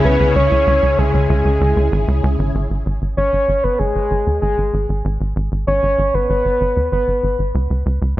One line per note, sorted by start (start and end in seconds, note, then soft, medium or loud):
0.00 2.51 C#3 medium
0.00 2.51 C#4 medium
0.00 2.51 E4 medium
0.00 2.51 G#4 medium
0.05 0.18 C#2 loud
0.05 0.35 B4 loud
0.20 0.34 C#2 medium
0.36 0.49 C#2 medium
0.36 1.00 C#5 loud
0.52 0.65 C#2 medium
0.67 0.81 C#2 loud
0.83 0.96 C#2 medium
0.98 1.12 C#2 medium
0.98 1.29 G#4 medium
1.14 1.27 C#2 medium
1.30 1.43 C#2 loud
1.30 2.20 G#4 medium
1.45 1.59 C#2 medium
1.61 1.74 C#2 loud
1.77 1.90 C#2 medium
1.92 2.06 G#1 loud
2.08 2.21 C#2 medium
2.24 2.37 C#2 medium
2.39 2.52 G#1 medium
2.55 2.68 G#1 medium
2.70 2.84 G#1 medium
2.86 2.99 G#1 medium
3.02 3.15 G#1 medium
3.17 3.31 G#1 loud
3.17 3.65 C#5 loud
3.33 3.46 G#1 medium
3.49 3.62 G#1 medium
3.64 3.77 G#1 medium
3.64 3.80 B4 loud
3.79 3.93 G#1 loud
3.79 4.41 G#4 loud
3.96 4.09 G#1 medium
4.11 4.24 G#1 medium
4.27 4.40 D#2 medium
4.42 4.56 G#1 loud
4.42 4.86 G#4 medium
4.58 4.71 G#1 medium
4.74 4.87 G#1 medium
4.89 5.03 G#1 medium
5.05 5.18 G#1 loud
5.21 5.34 G#1 medium
5.36 5.49 G#1 medium
5.52 5.65 G#1 medium
5.67 5.81 G#1 loud
5.67 6.16 C#5 loud
5.83 5.96 G#1 medium
5.99 6.12 G#1 medium
6.14 6.28 G#1 medium
6.14 6.29 B4 loud
6.30 6.43 G#1 loud
6.30 6.88 B4 loud
6.45 6.59 G#1 medium
6.61 6.74 G#1 medium
6.77 6.90 D#2 medium
6.92 7.06 G#1 loud
6.92 7.36 B4 medium
7.08 7.21 G#1 medium
7.24 7.37 G#1 medium
7.39 7.52 G#1 medium
7.55 7.68 C#2 loud
7.70 7.84 C#2 medium
7.86 7.99 C#2 medium
8.02 8.15 C#2 medium